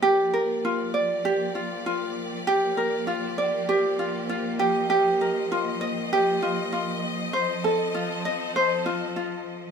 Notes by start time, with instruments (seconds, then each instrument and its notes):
Already playing: ukulele F4
0.02 string section F3 A#3 G4 D5, ukulele G4
0.34 ukulele A#4
0.65 ukulele F4
0.94 ukulele D5
1.25 ukulele G4
1.55 ukulele F4
1.86 ukulele F4
2.47 ukulele G4
2.77 ukulele A#4
3.07 ukulele F4
3.38 ukulele D5
3.69 ukulele G4
3.99 ukulele F4
4.29 ukulele F4
4.59 ukulele G4, string section D#5
4.90 ukulele G4
5.21 ukulele A#4
5.52 ukulele F4
5.81 ukulele D#5
6.13 ukulele G4
6.42 ukulele F4
6.72 ukulele F4
7.33 string section C4 A4, ukulele C5
7.64 ukulele A4
7.95 ukulele F4
8.25 ukulele D#5
8.56 ukulele C5
8.86 ukulele F4
9.16 ukulele F4